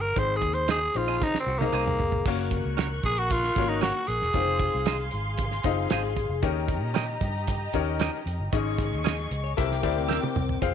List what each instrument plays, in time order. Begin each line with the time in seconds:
Already playing: fingered electric bass G1
0.01 tenor saxophone A#4
0.16 fingered electric bass G#1, upright piano G#2 C4 D#4 G#4 C5, tenor saxophone C5, kick, closed hi-hat
0.37 tenor saxophone G#4
0.42 fingered electric bass D#2, kick, closed hi-hat
0.54 tenor saxophone C5, closed hi-hat
0.68 clean electric guitar D#4 G#4 C5 D#5, tenor saxophone G#4, snare, closed hi-hat
0.94 fingered electric bass A#1, upright piano C4 D#4 G#4 C5, tenor saxophone F4, closed hi-hat
1.08 clean electric guitar D#4 G#4 C5 D#5
1.22 tenor saxophone D#4, kick, snare
1.34 muted fingered electric bass stroke, snare
1.40 tenor saxophone C4
1.46 fingered electric bass C2, clean electric guitar F#4
1.59 tenor saxophone A#3, upright piano C4 D#4 G#4 D#5, clean electric guitar A#4, high tom
1.73 fingered electric bass C2, clean electric guitar D#4 G#4 C5 D#5
1.87 clean electric guitar G#4, mid tom
2.00 fingered electric bass F1, floor tom
2.12 floor tom
2.25 fingered electric bass F#1, upright piano A#3 C#4 F#4 A#4 C#5, violin section A#4 C#6 F#6, kick, crash
2.51 kick, closed hi-hat
2.65 fingered electric bass C#2
2.77 clean electric guitar C#4 F#4 A#4 C#5, snare, closed hi-hat
3.03 fingered electric bass A#1, tenor saxophone G#4, kick, closed hi-hat
3.19 tenor saxophone F#4
3.30 tenor saxophone F4, kick, closed hi-hat
3.44 snare
3.56 fingered electric bass G#1, upright piano A#3 C#4 F#4 A#4 C#5, kick, closed hi-hat
3.69 tenor saxophone D#4
3.81 clean electric guitar C#4 F#4 A#4 C#5, tenor saxophone F#4, snare, closed hi-hat
4.08 fingered electric bass A#1, tenor saxophone G#4, closed hi-hat
4.22 fingered electric bass E1, snare
4.33 fingered electric bass F1, upright piano C4 D#4 F4 G#4 A#4, violin section G#4 F5 C6, kick, closed hi-hat
4.42 upright piano C5
4.59 kick, closed hi-hat
4.75 fingered electric bass C2
4.86 clean electric guitar D#4 G#4 C5 D#5, snare, closed hi-hat
5.11 fingered electric bass G#1, closed hi-hat
5.38 kick, closed hi-hat
5.51 snare
5.63 fingered electric bass F#1, upright piano C4 D#4 F4 G#4 D#5, clean electric guitar D#4, kick, closed hi-hat
5.90 fingered electric bass G#1, clean electric guitar D#4 F4 G#4 C5 D#5, snare, closed hi-hat
6.03 clean electric guitar G#4
6.17 kick, closed hi-hat
6.29 fingered electric bass F1
6.42 fingered electric bass D#2, upright piano D#3 C#4 D#4 G4 A#4 C#5, violin section G4 D#5 A#5, kick, closed hi-hat
6.68 kick, closed hi-hat
6.82 fingered electric bass A#2
6.94 clean electric guitar C#4 G4 A#4 D#5, snare, closed hi-hat
7.21 fingered electric bass G2, kick, closed hi-hat
7.48 kick, closed hi-hat
7.73 fingered electric bass D#2, upright piano C#4 D#4 G4 A#4 C#5, kick, closed hi-hat
8.00 clean electric guitar C#4 G4 A#4 D#5, snare, closed hi-hat
8.26 fingered electric bass F2, closed hi-hat
8.40 fingered electric bass G1
8.53 fingered electric bass G#1, upright piano G#2 C#4 D#4 G#4 C#5 D#5, violin section G#4 D#5 C#6, kick, closed hi-hat
8.78 kick, closed hi-hat
8.92 fingered electric bass D#2
9.05 clean electric guitar C#4 G#4 C#5 D#5, snare, closed hi-hat
9.31 fingered electric bass C#2, closed hi-hat
9.44 clean electric guitar C#5
9.57 fingered electric bass C2, upright piano C3 E4 G4 A#4 C5 E5, clean electric guitar A4, violin section A#4 G5 D6, kick, closed hi-hat
9.70 clean electric guitar G4, snare
9.83 fingered electric bass D2, upright piano E4 G4 A#4 C5 D5, clean electric guitar E4, kick, closed hi-hat
9.96 clean electric guitar C4
10.09 clean electric guitar C4 G4 A#4 E5, snare
10.23 high tom
10.36 fingered electric bass C2, mid tom
10.49 fingered electric bass E1, floor tom
10.61 fingered electric bass F1, upright piano C4 F4 G#4 C5 F5, violin section G#4 F5 C6, kick, closed hi-hat